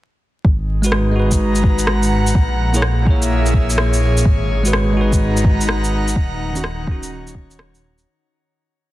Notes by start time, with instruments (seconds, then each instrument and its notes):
0.45 detuned saw bass G#1, analog synth pad G#3, kick
0.66 analog synth pad D#4
0.82 tine electric piano G#3 F#4, shaker
0.86 tine electric piano B4, analog synth pad A#5
0.92 cross-stick
1.12 tine electric piano G#3
1.16 tine electric piano F#4 B4
1.27 analog synth pad B4
1.32 analog synth pad F#5, kick, shaker
1.55 shaker
1.64 kick
1.79 shaker
1.87 cross-stick
2.03 shaker
2.27 shaker
2.35 detuned saw bass A#1, analog synth pad A#2, kick
2.55 analog synth pad A#3 G#4
2.73 tine electric piano A#3 E4 G#4 C#5, shaker
2.82 cross-stick
2.87 analog synth pad E5
3.02 tine electric piano A#3 E4
3.06 tine electric piano G#4 C#5, analog synth pad C#5, kick
3.22 shaker
3.46 shaker
3.54 kick
3.70 shaker
3.78 cross-stick
3.94 shaker
4.18 shaker
4.25 detuned saw bass G#1, analog synth pad G#3, kick
4.47 analog synth pad D#4
4.63 tine electric piano G#3 F#4, shaker
4.67 tine electric piano B4
4.73 cross-stick
4.83 analog synth pad A#5
4.93 tine electric piano G#3, analog synth pad F#5
4.97 tine electric piano F#4
5.01 tine electric piano B4, analog synth pad B4
5.13 kick, shaker
5.37 shaker
5.45 kick
5.61 shaker
5.69 cross-stick
5.84 shaker
6.08 shaker
6.16 detuned saw bass D#1, analog synth pad D#3, kick
6.53 tine electric piano D#3 C#4 F#4, shaker
6.64 cross-stick
6.83 tine electric piano D#3 C#4, kick
6.91 tine electric piano F#4
7.01 analog synth pad C#5, shaker
7.28 shaker
7.35 kick
7.51 shaker
7.59 cross-stick
7.75 shaker
7.98 shaker